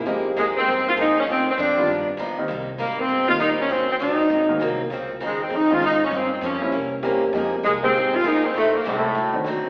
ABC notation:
X:1
M:4/4
L:1/8
Q:"Swing" 1/4=198
K:Fm
V:1 name="Grand piano"
[A,B,CEG]3 z4 z | z3 [E,G,=B,=DF] z3 [E,G,_B,CE] | z4 z [E,G,B,CE] z2 | z4 z [E,A,B,C_G] z2 |
z4 z [E,A,CDF] z2 | z3 [G,B,CD=E] z2 [G,B,CDG] z | [A,B,CEG] z2 [A,B,CEG] z4 | z4 z [E,=A,C=D^F] z2 |]
V:2 name="Saxophone section"
z2 A, C2 F E D | C C =D4 z2 | z2 B, C2 F E D | C C E4 z2 |
z2 A, C E F E D | C C D4 z2 | z2 A, C2 F E C | =A, B, A,4 z2 |]
V:3 name="Steel-string acoustic guitar"
[F,B,EA] z [F,B,EA] z [F,B,EA] z [F,B,EA] z | [=D,A,CF] z [D,A,CF] z [G,,F,=B,E] z [G,,F,B,E] z | [C,G,B,E] z [C,G,B,E] z [C,G,B,E] z [C,G,B,E] z | [E,_G,DF] z [E,G,DF] z [A,,G,B,C] z [A,,G,B,C] z |
[D,F,CE] z [D,F,CE] z [D,F,CE] z [D,F,CE] z | [G,,F,B,D] z [G,,F,B,D] z [C,=E,B,D] z [C,E,B,D] z | [F,B,EA] z [F,B,EA] z [F,B,EA] z [F,B,EA] z | [=A,,G,CE] z [A,,G,CE] z [=D,^F,CE] z [D,F,CE] z |]
V:4 name="Trombone section" clef=bass
z8 | z8 | z8 | z8 |
z8 | z8 | z8 | z2 =A,,4 z2 |]
V:5 name="Upright bass" clef=bass
F,,2 E,,2 G,,2 F,,2 | =D,,2 F,,2 G,,2 E,,2 | C,,2 A,,,2 G,,,2 B,,,2 | E,,2 D,,2 A,,,2 C,,2 |
D,,2 E,,2 F,,2 A,,2 | G,,2 F,,2 C,,2 =E,,2 | F,,2 C,,2 A,,,2 G,,,2 | =A,,,2 C,,2 =D,,2 E,, z |]